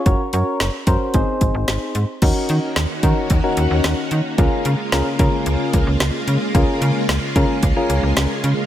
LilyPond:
<<
  \new Staff \with { instrumentName = "Synth keys" } { \time 4/4 \key ees \dorian \tempo 4 = 111 <des' ges' bes' des''>16 r16 <des' ges' bes' des''>8 r8 <des' ges' bes' c''>8 <c' ees' aes' c''>4. r8 | <des' ees' ges' bes'>8. r8. <des' ees' ges' bes'>8 r16 <des' ees' ges' bes'>4 r8. | <des' f' aes' bes'>8 r8 <des' f' aes' bes'>16 r16 <des' f' aes' bes'>4~ <des' f' aes' bes'>16 r4 r16 | <des' f' aes' bes'>8. r8. <des' f' aes' bes'>8 r16 <des' f' aes' bes'>4 r8. | }
  \new Staff \with { instrumentName = "String machine" } { \time 4/4 \key ees \dorian << { r1 | <bes des' ges'>1 | <aes f'>1~ | <aes f'>1 | } \\ { r1 | ees1 | des1 | des1 | } >> }
  \new Staff \with { instrumentName = "FM bass" } { \clef bass \time 4/4 \key ees \dorian ges,,16 r16 ges,16 r16 ges,,16 r16 ges,16 r16 aes,,16 r16 aes,,16 aes,,16 aes,,16 r16 aes,16 r16 | ees,16 r16 ees16 r16 ees,16 r16 ees16 r16 ees,16 r16 ees,16 ees,16 ees,16 r16 ees16 r16 | des,16 r16 des16 r16 des,16 r16 des16 r16 des,16 r16 des,16 des,16 des,16 r16 des16 r16 | des,16 r16 des16 r16 des,16 r16 des16 r16 des,16 r16 des,16 des,16 des,16 r16 des16 r16 | }
  \new DrumStaff \with { instrumentName = "Drums" } \drummode { \time 4/4 <hh bd>8 hh8 <hh sn>8 <hh bd>8 <hh bd>8 <hh bd>8 <hh sn>8 hh8 | <cymc hh bd>8 hh8 <hh sn>8 <hh bd>8 <hh bd>8 hh8 <hh sn>8 hh8 | <hh bd>8 hh8 <hh sn>8 <hh bd>8 hh8 <hh bd>8 <hh sn>8 hh8 | <hh bd>8 hh8 <hh sn>8 <hh bd>8 <hh bd>8 hh8 <hh sn>8 hh8 | }
>>